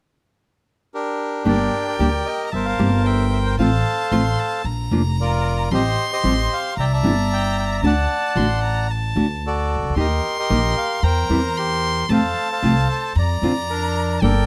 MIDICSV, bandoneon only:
0, 0, Header, 1, 2, 480
1, 0, Start_track
1, 0, Key_signature, -2, "minor"
1, 0, Tempo, 531915
1, 1315, Time_signature, 4, 2, 24, 8
1, 13050, End_track
2, 0, Start_track
2, 0, Title_t, "Bandoneon"
2, 0, Program_c, 0, 23
2, 849, Note_on_c, 0, 70, 61
2, 853, Note_on_c, 0, 62, 44
2, 854, Note_on_c, 0, 67, 49
2, 1289, Note_off_c, 0, 70, 0
2, 1334, Note_on_c, 0, 74, 69
2, 1335, Note_off_c, 0, 67, 0
2, 1345, Note_on_c, 0, 70, 47
2, 1349, Note_on_c, 0, 67, 50
2, 1673, Note_off_c, 0, 74, 0
2, 1685, Note_off_c, 0, 70, 0
2, 1686, Note_off_c, 0, 67, 0
2, 1686, Note_on_c, 0, 74, 67
2, 1699, Note_on_c, 0, 67, 42
2, 1699, Note_on_c, 0, 70, 46
2, 1770, Note_off_c, 0, 62, 0
2, 2034, Note_on_c, 0, 75, 63
2, 2053, Note_off_c, 0, 74, 0
2, 2253, Note_off_c, 0, 67, 0
2, 2253, Note_off_c, 0, 70, 0
2, 2259, Note_off_c, 0, 75, 0
2, 2281, Note_on_c, 0, 76, 62
2, 2302, Note_on_c, 0, 70, 50
2, 2302, Note_on_c, 0, 72, 49
2, 2391, Note_off_c, 0, 76, 0
2, 2392, Note_on_c, 0, 77, 70
2, 2402, Note_off_c, 0, 72, 0
2, 2405, Note_off_c, 0, 70, 0
2, 2415, Note_on_c, 0, 72, 51
2, 2419, Note_on_c, 0, 70, 53
2, 2730, Note_off_c, 0, 77, 0
2, 2761, Note_on_c, 0, 76, 70
2, 2983, Note_off_c, 0, 76, 0
2, 3004, Note_on_c, 0, 76, 57
2, 3057, Note_off_c, 0, 76, 0
2, 3126, Note_on_c, 0, 79, 75
2, 3179, Note_off_c, 0, 79, 0
2, 3211, Note_off_c, 0, 72, 0
2, 3213, Note_off_c, 0, 70, 0
2, 3240, Note_on_c, 0, 77, 72
2, 3255, Note_on_c, 0, 72, 58
2, 3256, Note_on_c, 0, 69, 56
2, 4163, Note_off_c, 0, 77, 0
2, 4170, Note_off_c, 0, 72, 0
2, 4171, Note_off_c, 0, 69, 0
2, 4699, Note_on_c, 0, 65, 52
2, 4700, Note_on_c, 0, 74, 65
2, 4702, Note_on_c, 0, 70, 47
2, 5135, Note_off_c, 0, 65, 0
2, 5135, Note_off_c, 0, 74, 0
2, 5136, Note_off_c, 0, 70, 0
2, 5178, Note_on_c, 0, 72, 53
2, 5179, Note_on_c, 0, 67, 49
2, 5181, Note_on_c, 0, 75, 74
2, 5504, Note_off_c, 0, 75, 0
2, 5515, Note_off_c, 0, 72, 0
2, 5517, Note_off_c, 0, 67, 0
2, 5529, Note_on_c, 0, 72, 41
2, 5529, Note_on_c, 0, 75, 60
2, 5531, Note_on_c, 0, 67, 48
2, 5892, Note_on_c, 0, 77, 63
2, 5893, Note_off_c, 0, 75, 0
2, 6085, Note_off_c, 0, 72, 0
2, 6086, Note_off_c, 0, 67, 0
2, 6107, Note_off_c, 0, 77, 0
2, 6131, Note_on_c, 0, 76, 50
2, 6132, Note_on_c, 0, 79, 71
2, 6134, Note_on_c, 0, 74, 49
2, 6182, Note_off_c, 0, 79, 0
2, 6246, Note_off_c, 0, 76, 0
2, 6247, Note_off_c, 0, 74, 0
2, 6255, Note_on_c, 0, 81, 73
2, 6259, Note_on_c, 0, 76, 52
2, 6260, Note_on_c, 0, 74, 53
2, 6614, Note_on_c, 0, 79, 81
2, 6615, Note_off_c, 0, 81, 0
2, 6828, Note_off_c, 0, 79, 0
2, 6847, Note_on_c, 0, 79, 68
2, 6898, Note_off_c, 0, 79, 0
2, 6961, Note_on_c, 0, 82, 71
2, 7013, Note_off_c, 0, 82, 0
2, 7049, Note_off_c, 0, 76, 0
2, 7050, Note_off_c, 0, 74, 0
2, 7087, Note_on_c, 0, 81, 80
2, 7094, Note_on_c, 0, 74, 53
2, 7097, Note_on_c, 0, 78, 61
2, 8004, Note_off_c, 0, 81, 0
2, 8007, Note_off_c, 0, 74, 0
2, 8009, Note_off_c, 0, 78, 0
2, 8542, Note_on_c, 0, 66, 50
2, 8544, Note_on_c, 0, 69, 45
2, 8547, Note_on_c, 0, 74, 68
2, 8977, Note_off_c, 0, 66, 0
2, 8978, Note_off_c, 0, 69, 0
2, 8980, Note_off_c, 0, 74, 0
2, 9020, Note_on_c, 0, 70, 46
2, 9023, Note_on_c, 0, 75, 62
2, 9025, Note_on_c, 0, 67, 52
2, 9346, Note_off_c, 0, 75, 0
2, 9363, Note_off_c, 0, 70, 0
2, 9364, Note_off_c, 0, 67, 0
2, 9376, Note_on_c, 0, 70, 47
2, 9377, Note_on_c, 0, 67, 48
2, 9377, Note_on_c, 0, 75, 65
2, 9703, Note_off_c, 0, 75, 0
2, 9723, Note_on_c, 0, 77, 65
2, 9931, Note_off_c, 0, 70, 0
2, 9932, Note_off_c, 0, 67, 0
2, 9944, Note_off_c, 0, 77, 0
2, 9959, Note_on_c, 0, 79, 73
2, 9965, Note_on_c, 0, 72, 52
2, 9966, Note_on_c, 0, 70, 51
2, 10182, Note_off_c, 0, 79, 0
2, 10436, Note_off_c, 0, 72, 0
2, 10450, Note_on_c, 0, 72, 64
2, 10456, Note_on_c, 0, 67, 50
2, 10885, Note_off_c, 0, 70, 0
2, 10890, Note_off_c, 0, 72, 0
2, 10893, Note_off_c, 0, 67, 0
2, 10940, Note_on_c, 0, 72, 58
2, 10942, Note_on_c, 0, 69, 52
2, 10942, Note_on_c, 0, 77, 75
2, 11264, Note_off_c, 0, 77, 0
2, 11282, Note_off_c, 0, 69, 0
2, 11285, Note_off_c, 0, 72, 0
2, 11295, Note_on_c, 0, 69, 46
2, 11299, Note_on_c, 0, 72, 53
2, 11302, Note_on_c, 0, 77, 61
2, 11623, Note_off_c, 0, 77, 0
2, 11655, Note_on_c, 0, 81, 67
2, 11758, Note_off_c, 0, 81, 0
2, 11847, Note_off_c, 0, 69, 0
2, 11849, Note_off_c, 0, 72, 0
2, 11893, Note_on_c, 0, 82, 66
2, 11899, Note_on_c, 0, 74, 53
2, 11996, Note_off_c, 0, 82, 0
2, 12363, Note_on_c, 0, 70, 66
2, 12369, Note_on_c, 0, 62, 47
2, 12803, Note_off_c, 0, 70, 0
2, 12806, Note_off_c, 0, 62, 0
2, 12807, Note_off_c, 0, 74, 0
2, 12844, Note_on_c, 0, 74, 74
2, 12848, Note_on_c, 0, 70, 48
2, 12852, Note_on_c, 0, 69, 50
2, 13050, Note_off_c, 0, 69, 0
2, 13050, Note_off_c, 0, 70, 0
2, 13050, Note_off_c, 0, 74, 0
2, 13050, End_track
0, 0, End_of_file